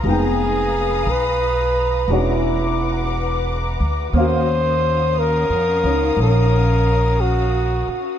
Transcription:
X:1
M:4/4
L:1/16
Q:"Swing" 1/4=59
K:Ebdor
V:1 name="String section"
[_cfbe']8 [=B^f=d']8 | [DGfe']16 |]
V:2 name="Flugelhorn"
A4 _c4 =E4 z4 | c4 B4 B4 G3 z |]
V:3 name="Grand piano"
[A,_CE=g]8 [^G,^C=D^F]8 | [B,DGf]6 [DE]8- [DE]2 |]
V:4 name="Upright bass" clef=bass
F,,,4 _C,,4 =E,,,6 =D,,2 | E,,4- (3E,,2 F,,2 D,,2 B,,,6 z2 |]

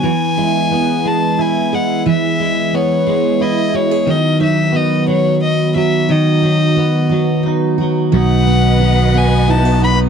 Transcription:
X:1
M:6/8
L:1/16
Q:3/8=59
K:Bmix
V:1 name="Violin"
g6 a2 g2 f2 | e4 c4 d2 c2 | d2 e2 d2 c2 d2 e2 | d8 z4 |
[K:Bdor] f6 g2 a2 b2 |]
V:2 name="String section"
z12 | z12 | z12 | z12 |
[K:Bdor] [B,B^df]12 |]
V:3 name="Steel-string acoustic guitar"
E,2 E2 B,4 E2 G2 | E,2 E2 B,2 G2 E2 F G | F,2 D2 B,2 F4 F2 | F,2 D2 B,2 F2 D2 F2 |
[K:Bdor] [F,F]2 B,2 F2 B,2 E F ^D2 |]
V:4 name="Clean electric guitar" clef=bass
E,2 G,2 B,2 G,2 E2 G,2 | E,2 G,2 B,2 G,2 E2 G,2 | D,2 F,2 B,2 F,4 F,2 | D,2 F,2 B,2 F,2 D2 F,2 |
[K:Bdor] [B,,^D]2 B,2 F,2 B,2 D2 B,2 |]
V:5 name="Fretless electric bass" clef=bass
z12 | z12 | z12 | z12 |
[K:Bdor] B,,,12 |]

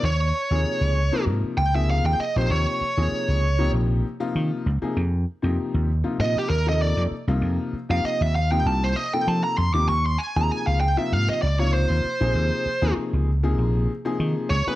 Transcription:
X:1
M:4/4
L:1/16
Q:"Swing 16ths" 1/4=98
K:Ebmix
V:1 name="Lead electric guitar"
d8 z2 g _f =f g e c | d8 z8 | z8 e G B e =d2 z2 | z3 f e _f =f g =a c e g a b c' =d' |
d' c' a b a f g _f =f e =d _d c4- | c4 z8 z2 d _c |]
V:2 name="Grand piano"
z3 [C,F,B,EA]3 z [C,F,B,EB]3 z [C,F,B,EA]3 z [C,F,B,EG]- | [C,F,B,EG]2 z [C,F,B,EA]3 z [C,F,B,EG]3 z [C,F,B,EF]3 z [C,F,B,EA] | z3 [C,F,B,EG]3 z [C,F,B,EF]3 z [C,F,B,E=A]3 z [C,F,B,EF]- | [C,F,B,EF]2 z [C,F,B,EG]3 z [C,F,B,EG]3 z [C,F,B,E=A]3 z [C,F,B,EG] |
z3 [C,F,B,EA]3 z [C,F,B,EF]3 z [C,F,B,EF]3 z [C,F,B,EA]- | [C,F,B,EA]2 z [C,F,B,EA]3 z [C,F,B,EA]3 z [C,F,B,EA]3 z [C,F,B,EA] |]
V:3 name="Slap bass" clef=bass
E,,2 z E,, z D,,2 z A,, z D,,3 E,, z B,,, | E,, z2 E,, z D,,3 B,,,2 z2 E, z D,, z | F,,2 z F,, z E,,2 z B,, z E,,3 F,, z C,, | F,, z2 F,, z E,,3 C,,2 z2 F, z F,, E,, |
E,,2 z E,, z D,,2 z A,, z D,,3 E,, z B,,, | E,, z2 E,, z D,,3 B,,,2 z2 E, z D,, z |]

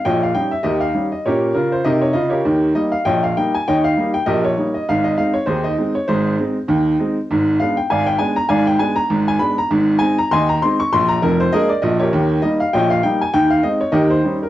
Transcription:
X:1
M:2/4
L:1/16
Q:"Swing 16ths" 1/4=99
K:Ab
V:1 name="Upright piano"
[deg] f g _f [GBe] =f2 e | [GBd]2 B c [GBe] d e [GBd]- | [GBd]2 e f [deg] f g a | [deg] f2 g [GBe] d2 e |
f e f d [EAc] e2 d | [EAc]2 z6 | z2 f g [=dfa] g a b | [=dfa] g a b2 a _c' b |
z2 a b [eac'] b c' d' | c' b B c [ABe] =d e [GB_d]- | [GBd]2 e f [deg] f g a | g f e d [GBe] c2 B |]
V:2 name="Upright piano" clef=bass
[B,,,B,,]2 [G,DE]2 [E,,E,]2 [G,DE]2 | [B,,D]2 [D,F]2 [C,E]2 [D,F]2 | [E,,E,]2 [G,B,E]2 [B,,,B,,]2 [G,B,E]2 | [E,,E,]2 [G,B,E]2 [B,,,B,,]2 [G,B,E]2 |
[A,,,A,,]2 [A,CE]2 [E,,E,]2 [A,CE]2 | [A,,,A,,]2 [A,CE]2 [E,,E,]2 [A,CE]2 | [A,,,A,,]2 [A,_C=D]2 [A,,,A,,]2 [A,CD]2 | [A,,,A,,]2 [A,_C=D]2 [A,,,A,,]2 [A,CD]2 |
[A,,,A,,]2 [A,CE]2 [E,,E,]2 [A,CE]2 | [B,,,B,,]2 [F,,,F,,]2 [A,B,=D]2 [B,,,B,,]2 | [E,,E,]2 [G,B,E]2 [B,,,B,,]2 [G,B,E]2 | [E,,E,]2 [A,CE]2 [E,,E,]2 [G,DE]2 |]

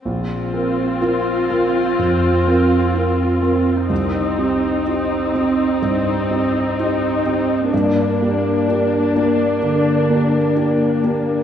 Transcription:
X:1
M:4/4
L:1/8
Q:1/4=63
K:Bb
V:1 name="Grand piano"
B,,, [CB] [FB] [CB] F,, [CB] [FB] [CB] | C,, [CG] [EG] [CG] G,, [CG] [EG] [CG] | G,, [B,G] [DG] [B,G] D, [B,G] [DG] [B,G] |]
V:2 name="Viola section"
[CF]8 | [CE]8 | [B,D]8 |]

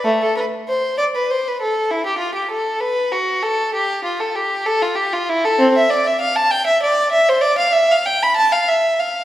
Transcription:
X:1
M:6/8
L:1/16
Q:3/8=65
K:Am
V:1 name="Violin"
A, A B2 c2 d B c B A2 | E G F G A2 B2 ^F2 A2 | G2 F A G2 A F G F E A | [K:Ephr] C e d e f a g e d2 e c |
d f e f g b a f e2 f2 |]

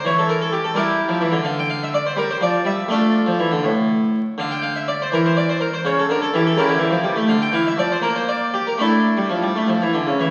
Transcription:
X:1
M:6/8
L:1/16
Q:3/8=82
K:Dm
V:1 name="Harpsichord"
^c A B A G A [EGB]6 | f g f e d c B c d2 e2 | [DFA]6 z6 | f g f e d c B c d c B c |
^c A ^A =A G A [EG^A]6 | f g f e d c B c d2 G B | [DEA]8- [DEA]2 z2 |]
V:2 name="Harpsichord" clef=bass
E,6 G,3 F, E, D, | D,6 G,2 F,2 G,2 | A,3 F, E, D, A,,6 | D,6 E,6 |
^C,2 D,2 E,2 C, D, E, F, G, A, | D,2 E,2 F,2 B,6 | A,3 G, F, G, A, F, E, D, ^C, E, |]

